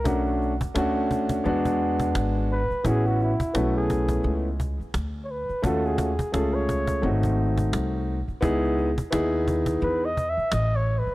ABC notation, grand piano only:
X:1
M:4/4
L:1/8
Q:"Swing 16ths" 1/4=86
K:Alyd
V:1 name="Grand piano"
[A,C=DF] z [A,CDF]2 [G,B,DF]3 z | [B,CEF] z [A,B,CE]3 z3 | [A,C^EF] z [A,CEG]2 [A,^B,DF]3 z | [B,DEG] z [B,DEG]3 z3 |]